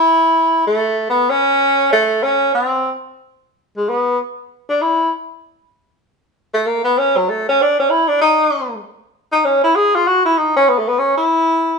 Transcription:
Already playing: E4
0.67 A3
1.09 B3
1.30 C#4
1.92 A3
2.23 C#4
2.54 C4
3.77 G#3
3.89 B3
4.69 D4
4.81 E4
6.54 A3
6.66 A#3
6.84 B3
6.98 C#4
7.17 F#3
7.29 A3
7.49 C#4
7.62 D4
7.79 C#4
7.90 E4
8.08 D4
8.21 D#4
9.32 D#4
9.45 C#4
9.63 E4
9.75 G#4
9.95 F4
10.07 F#4
10.25 E4
10.37 D#4
10.56 C#4
10.68 B3
10.78 A3
10.88 B3
10.99 C#4
11.17 E4

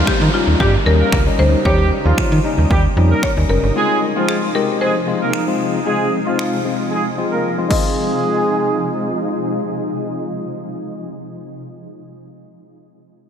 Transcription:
Already playing: C#3 F3 G3 A#3 C#4 D#4 F4, downlifter
0.07 D#3 G4, finger snap, kick
0.21 D#3
0.33 G3 C#4 D#4 F4
0.48 D#2
0.60 G2 G3 G4, kick
0.86 D#2 G3 C#4 D#4 A#4
1.00 A#3 A#4
1.12 C#2, finger snap, kick
1.26 G3 C#4 D#4
1.39 D2 C5
1.65 D#2 G3 C#4 D#4 G4 C#5, kick
2.05 D#2 F3 G3 C#4 D#4 F4
2.18 D#3, finger snap, kick
2.32 D#3
2.44 G3 C#4 D#4
2.58 D#2
2.70 D#2 G3 G4, kick
2.97 F2 G3 C#4 D#4
3.11 A#3 A#4
3.23 C#5, finger snap, kick
3.37 D#2 G3 C#4 D#4
3.49 F#1 A#4
3.63 G1
3.76 C3 F3 G#3 C4 F4 G#4
4.16 F3 G#3 C4 F4
4.29 G#4, finger snap
4.55 G#3 C4 G4 A#4
4.81 G#3 G#4 C5
5.07 G#3 C4 F4
5.21 A#3 A#4
5.33 finger snap
5.47 G#3 C4 F4
5.86 G#3 C4 F4 G#4
6.26 F3 G#3 C4 F4
6.39 finger snap
6.65 G#3 C4 F4
6.92 G#3 G#4
7.18 G#3 C4 F4
7.32 A#3 A#4
7.58 G#3 C4 F4
7.68 C3 F3 G#3 C4 D#4 G#4 D#5, kick, crash
7.72 F4

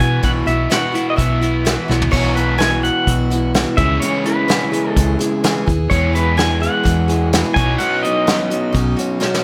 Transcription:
Already playing: B2 E3 E4 F#4
0.00 B2 B3 E4 G#5, kick, closed hi-hat
0.23 B1 B2 E3 B3 E4 F#4 F#5, kick, closed hi-hat
0.46 B1 B3 E4 F#4 E5, closed hi-hat
0.70 B2 E3 B3 E4 F#4 F#5, snare, closed hi-hat
0.92 B3 E4 F#4, closed hi-hat
1.10 D#5
1.16 B1 E3 B3 E4 F#4 E5, kick, closed hi-hat
1.41 B3 E4 F#4, closed hi-hat
1.65 B2 E3 B3 E4 F#4, snare, closed hi-hat
1.88 B1 B3 E4 F#4, snare
2.02 floor tom
2.11 B1 B2 E3 B3 E4 F#4 C#5, kick, crash
2.35 B3 E4 F#4 B4, closed hi-hat
2.58 B2 E3 B3 E4 F#4 G#5, snare, closed hi-hat
2.83 B3 E4 F#4 F#5, closed hi-hat
3.07 B1 E3 B3 E4 F#4, kick, closed hi-hat
3.30 B3 E4 F#4, closed hi-hat
3.54 B2 E3 B3 E4 F#4, snare, closed hi-hat
3.77 C#2 C#3 E3 G#3 B3 C#4 E4 G#4 E5, kick, closed hi-hat
4.00 C#3 E3 B3 E4 G#4 C#5, closed hi-hat
4.24 B3 E4 G#4 B4, closed hi-hat
4.48 C#3 E3 B3 E4 G#4, snare, closed hi-hat
4.72 B3 E4 G#4, closed hi-hat
4.90 A4
4.96 C#2 E3 B3 E4 G#4, kick, closed hi-hat
5.19 B3 E4 G#4, closed hi-hat
5.44 C#3 E3 B3 E4 G#4, snare, closed hi-hat
5.66 D#2 B3 E4 G#4, kick, closed hi-hat
5.90 E2 B2 E3 G#3 B3 E4 G#4 C#5, kick, closed hi-hat
6.13 B3 E4 G#4 B4, closed hi-hat
6.37 E3 B3 E4 G#4 G#5, snare, closed hi-hat
6.60 B3 E4 G#4 F#5, closed hi-hat
6.83 E2 E3 B3 E4 G#4, kick, closed hi-hat
7.08 B3 E4 G#4, closed hi-hat
7.33 E3 B3 E4 G#4, snare, closed hi-hat
7.54 B1 B2 F#3 B3 D#4 F#4 G#5, kick, closed hi-hat
7.59 C#4
7.78 B2 F#3 C#4 D#4 F#4 F#5, closed hi-hat
8.03 C#4 D#4 F#4 D#5, closed hi-hat
8.27 B2 F#3 C#4 D#4 F#4, snare, closed hi-hat
8.50 C#4 D#4 F#4, closed hi-hat
8.73 B1 F#3 C#4 D#4 F#4, kick, closed hi-hat
8.96 C#4 D#4 F#4, closed hi-hat
9.20 B2 F#3 C#4 D#4 F#4, snare
9.34 snare

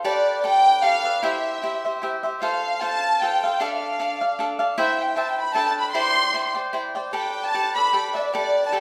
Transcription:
0.04 G4 A4 B4 D5
0.44 G4 A4 B4 D5 G5
0.83 G4 A4 B4 D5 F5
1.04 A4 B4 D5
1.22 E4 G4 C5 E5
1.62 E4 G4 C5 E5
1.85 G4 C5 E5
2.02 E4 G4 C5 E5
2.23 G4 C5 E5
2.42 F4 A4 C5 F5
2.81 F4 A4 C5 F5 A5
3.22 F4 A4 C5 F5 G5
3.44 A4 C5 F5
3.60 D4 A4 D5 F5
3.68 E5
3.75 F5
3.99 D4 A4 D5 F5
4.21 A4 D5 F5
4.39 D4 A4 D5 F5
4.59 A4 D5 F5
4.78 E4 C5 E5 G5
5.01 G5
5.16 E4 C5 E5 G5 A5
5.31 G5
5.41 B5
5.54 D4 A4 B4 G5 A5
5.67 A5
5.80 B5
5.93 E4 C5 D5 G5 C6
6.34 E4 C5 D5 G5
6.54 C5 D5 G5
6.73 E4 C5 D5 G5
6.95 C5 D5 G5
7.13 G4 A4 B4 D5 G5
7.45 A5
7.55 G4 A4 B4 D5
7.75 A4 B4 D5 B5
7.93 G4 A4 B4 D5
8.15 A4 B4 D5 E5
8.25 D5
8.33 G4 A4 B4 D5
8.66 A5
8.72 G4 A4 B4 D5 G5

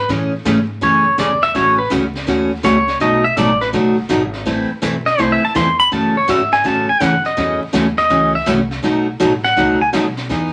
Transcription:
0.09 A2 C#3 E3 A3 C#4 G#4, brush sweep, kick, snare
0.45 G#2 C#3 E3 A3 C#4 G#4, kick, snare, hi-hat pedal
0.81 F#2 C#3 E3 A3 C#4 G#4 C#5, brush sweep, kick, snare
1.18 E2 C#3 E3 A3 C#4 G#4 D5, kick, snare, hi-hat pedal
1.42 E5, snare
1.55 A1 C#3 E3 A3 C#4 F#4 C#5, brush sweep, kick, snare
1.78 B4
1.90 C#2 C#3 E3 A3 C#4 F#4, kick, snare, hi-hat pedal
2.15 snare
2.27 D#2 C#3 E3 A3 C#4 F#4, brush sweep, kick, snare
2.63 C#2 C#3 E3 A3 C#4 F#4 C#5, kick, snare, hi-hat pedal
2.88 snare
3.00 B1 B2 F#3 A3 D#4 F#4 D#5, brush sweep, kick, snare
3.24 E5
3.36 A1 B2 F#3 A3 D#4 F#4 D5, kick, snare, hi-hat pedal
3.61 B4, snare
3.73 F#1 B2 F#3 A3 D#4 F#4, brush sweep, kick, snare
4.09 G#1 B2 F#3 A3 D#4 F#4, kick, snare, hi-hat pedal
4.33 snare
4.45 A1 E3 A3 C4 E4 B4, brush sweep, kick, snare
4.70 muted upright bass stroke
4.82 B1 E3 A3 C4 E4 B4, kick, snare, hi-hat pedal
5.06 D#5, snare
5.18 C2 E3 A3 C4 E4 B4 C5, brush sweep, kick, snare
5.32 E5
5.45 A5
5.55 E2 E3 A3 C4 E4 B4 C6, kick, snare, hi-hat pedal
5.79 B5, snare
5.92 F#2 C#3 E3 A3 C#4 F#4 A5, brush sweep, kick, snare
6.17 C#5
6.28 G#2 C#3 E3 A3 C#4 F#4 E5, kick, snare, hi-hat pedal
6.52 G#5, snare
6.64 A2 C#3 E3 A3 C#4 F#4 A5, brush sweep, kick, snare
6.89 G#5, muted upright bass stroke
7.00 F#2 C#3 E3 A3 C#4 F#4 F#5, kick, snare, hi-hat pedal
7.25 D#5, snare
7.37 E2 C#3 E3 A3 C#4 F#4, brush sweep, kick, snare
7.62 muted upright bass stroke
7.73 D#2 C#3 E3 A3 C#4 F#4, kick, snare, hi-hat pedal
7.98 D#5, snare
8.10 C#2 C#3 E3 A3 C#4 F#4, brush sweep, kick, snare
8.35 E5
8.46 C2 C#3 E3 A3 C#4 F#4, kick, snare, hi-hat pedal
8.71 snare
8.83 B1 B2 F#3 A3 D#4 F#4, brush sweep, kick, snare
9.20 A1 B2 F#3 A3 D#4 F#4, kick, snare, hi-hat pedal
9.44 F#5, snare
9.56 C#2 B2 F#3 A3 D#4 F#4, brush sweep, kick, snare
9.81 G#5
9.93 B1 B2 F#3 A3 D#4 F#4, kick, snare, hi-hat pedal
10.17 snare
10.29 E2 E3 B3 D#4 G#4, brush sweep, kick, snare

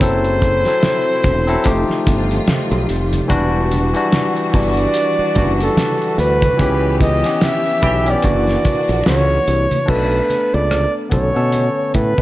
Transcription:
Already playing: A3
0.00 F#1 C3 F#3 C4 E4 A4 C5, kick, closed hi-hat, muted conga
0.24 closed hi-hat
0.42 kick, closed hi-hat, muted conga
0.65 F#3 C4 E4 A4, snare, closed hi-hat
0.83 snare, closed hi-hat, high conga
1.24 E1, kick, closed hi-hat
1.47 F#3 C4 E4 A4, closed hi-hat
1.64 F1 D#3 F3 G3 A3 D#4 F4 G4, kick, closed hi-hat, muted conga
1.90 muted fingered electric bass stroke, snare
2.07 G1, kick, closed hi-hat
2.31 closed hi-hat
2.48 snare, closed hi-hat, high conga
2.71 B1, closed hi-hat
2.89 F1, closed hi-hat
3.13 closed hi-hat, high conga
3.28 E1 E3 G3 D4 F#4, kick, closed hi-hat, muted conga
3.32 D4
3.71 closed hi-hat, muted conga
3.94 E3 G3 D4 F#4, closed hi-hat
4.12 snare, closed hi-hat, high conga
4.37 closed hi-hat
4.51 G1 E3 G3 D4 F#4 D5, kick, open hi-hat
4.77 closed hi-hat
4.94 closed hi-hat
5.19 muted fingered electric bass stroke
5.35 F#1 E3 G3 D4 F#4, kick, closed hi-hat, low conga
5.60 A4, closed hi-hat
5.77 snare, closed hi-hat, high conga
6.02 closed hi-hat
6.18 D2 B4, closed hi-hat
6.42 kick, closed hi-hat, high conga
6.58 C#2 E3 B3 C#4 G4, kick, closed hi-hat, muted conga
6.62 B3 G4
7.01 D#5, kick, closed hi-hat, muted conga
7.23 E3 B3 C#4 G4, snare, closed hi-hat
7.41 E5, snare, closed hi-hat, high conga
7.65 closed hi-hat
7.82 B1 E3 C#4 G4, kick, closed hi-hat
8.05 E3 B3 C#4 G4, closed hi-hat
8.10 D5
8.22 F#1 E3 A#3 D4 F#4, kick, closed hi-hat, muted conga
8.47 snare, closed hi-hat
8.65 muted fingered electric bass stroke, kick, closed hi-hat
8.89 A#1, closed hi-hat
9.06 C#2 C#5, snare, closed hi-hat, high conga
9.48 C2, closed hi-hat
9.71 closed hi-hat, high conga
9.86 B1 A3 B3 D4 A4 B4, kick, crash, muted conga
10.30 closed hi-hat, muted conga
10.54 C#2 D5
10.71 cross-stick, closed hi-hat, high conga
11.09 B1 D3 B3 C#4 A4 C#5, kick, closed hi-hat
11.33 B2 D3 B3 C#4 A4
11.52 closed hi-hat, muted conga
11.94 A2 B4, kick, closed hi-hat
12.18 B2, kick

